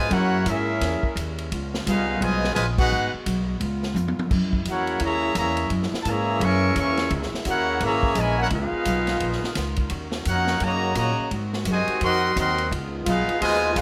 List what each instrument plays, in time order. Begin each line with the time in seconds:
Already playing: saxophone section C#4, trumpet section F4 D#5 G#5
0.09 upright bass F#2, saxophone section G#3 E4, trombone section A#3 C#4 F#4, trumpet section E4 A#4 C#5 F#5, kick, ride
0.45 upright bass G#2, trombone section A#3 C#4 E4, trumpet section C#4 G#4 A#4 E5, kick, hi-hat pedal, ride
0.81 upright bass E2, kick, snare, ride
1.03 kick
1.16 upright bass D#2, kick, hi-hat pedal, ride
1.38 ride
1.51 upright bass C#2, saxophone section B3 F4, kick, ride
1.74 snare
1.86 upright bass C2, trombone section G#3 B3 F4, trumpet section D#4 G#4 B4 F5, kick, hi-hat pedal, ride
2.18 upright bass B1, trombone section B2 F3 G#3, trumpet section F4 D#5, kick, ride
2.22 trumpet section B4 G#5
2.44 snare
2.53 upright bass A#1, trombone section B2 F3 G#3, trumpet section F4 B4 D#5 G#5, kick, hi-hat pedal, ride
2.77 trombone section B3 D#4 F#4, trumpet section D#4 G#4 B4 F#5, kick, crash
2.92 upright bass G#1, saxophone section G#3 F#4
3.14 muted upright bass stroke
3.26 upright bass B1, kick, hi-hat pedal, ride
3.60 upright bass C#2, saxophone section F4, kick, ride
3.83 snare
3.95 upright bass F2, hi-hat pedal, high tom
4.08 high tom
4.18 muted upright bass stroke, high tom
4.29 upright bass F#2, saxophone section G#3 E4, kick, crash
4.53 kick
4.65 upright bass E2, trombone section A#3 F#4, kick, hi-hat pedal, ride
4.69 trombone section C#4, trumpet section E4 A#4 C#5 F#5
4.87 ride
5.00 upright bass D#2, trombone section C#3 A#3 E4, kick, ride
5.04 trumpet section G#4 C#5 E5 A#5
5.35 upright bass E2, trombone section C#3 E3 A#3, trumpet section G#4 C#5 E5 A#5, kick, hi-hat pedal, ride
5.57 ride
5.70 upright bass F#2, kick, ride
5.83 snare
5.92 muted upright bass stroke, snare
6.01 trumpet section A5
6.05 upright bass G#2, trombone section C#3 E3 A#3, trumpet section G#4 C#5 A#5, kick, hi-hat pedal, ride
6.09 trumpet section E5
6.40 upright bass F#2, trombone section E3 A#3 C#4, trumpet section A#4 E5 G#5 C#6, kick, ride
6.76 upright bass E2, trombone section E3 A#3 C#4, trumpet section A#4 E5 G#5 C#6, kick, hi-hat pedal, ride
6.97 snare, ride
7.10 upright bass C#2, kick, ride
7.23 snare
7.32 muted upright bass stroke, snare
7.45 upright bass D#2, trombone section A#3 C#4 F#4, trumpet section E4 A#4 F#5, kick, hi-hat pedal, ride
7.49 trumpet section C#5
7.80 upright bass G#1, trombone section C#3 E3 A#3, trumpet section G#4 C#5 E5 A#5, kick, ride
8.03 kick
8.15 upright bass A#1, trombone section C#3 E3 G#3, trumpet section E4 A#4 G#5, kick, hi-hat pedal, ride
8.19 trumpet section C#5
8.38 trombone section A#3 C#4 F#4, trumpet section E4 A#4 C#5 F#5
8.50 upright bass C#2, saxophone section D#3 B3 F4, trombone section G#3 B3 F4, trumpet section D#4 G#4 B4 F5, kick, ride
8.72 muted upright bass stroke
8.85 upright bass B1, kick, hi-hat pedal, ride
9.07 snare, ride
9.20 upright bass A#1, kick, ride
9.33 snare
9.44 snare
9.55 upright bass C#2, kick, snare, hi-hat pedal, ride
9.76 kick, ride
9.90 upright bass D#2, saxophone section C#4 F#4, kick, ride
10.12 snare
10.25 upright bass F2, trombone section C#4 F#4, trumpet section D#4 A#4 C#5 F#5, kick, hi-hat pedal, ride
10.29 trombone section A#3
10.47 snare
10.60 upright bass F#2, trombone section C#3 F#3 A#3, trumpet section F#4 C#5 D#5 A#5, kick, ride
10.95 upright bass A#2, trombone section C#3 F#3 A#3, trumpet section F#4 C#5 D#5 A#5, kick, hi-hat pedal, ride
11.18 muted upright bass stroke
11.31 upright bass G#2, saxophone section D#3 C4 F#4, kick, ride
11.53 snare
11.65 upright bass F#2, trombone section C3 D#3 G#3, kick, hi-hat pedal, ride
11.70 trumpet section F#4 C5 D#5 G#5
11.87 muted upright bass stroke, ride
12.01 upright bass F2, trombone section D#3 C4 F#4, trumpet section A#4 D#5 F#5 C6, kick, ride
12.35 upright bass D#2, trombone section D#3 F#3 C4, trumpet section A#4 D#5 F#5 C6, kick, hi-hat pedal, ride
12.58 ride
12.71 upright bass C#2, saxophone section D#3 G#3 B3 F4, kick, ride
13.04 upright bass B1, trombone section G#3 B3 F4, trumpet section D#4 G#4 B4 F5, kick, hi-hat pedal, ride
13.28 muted upright bass stroke, ride
13.40 upright bass D#2, trombone section B2 F3 G#3, trumpet section F4 B4 D#5 G#5, kick, ride
13.73 upright bass G#1, trombone section G#3 B3 F4, trumpet section D#4 G#4 B4 F5, kick, hi-hat pedal, ride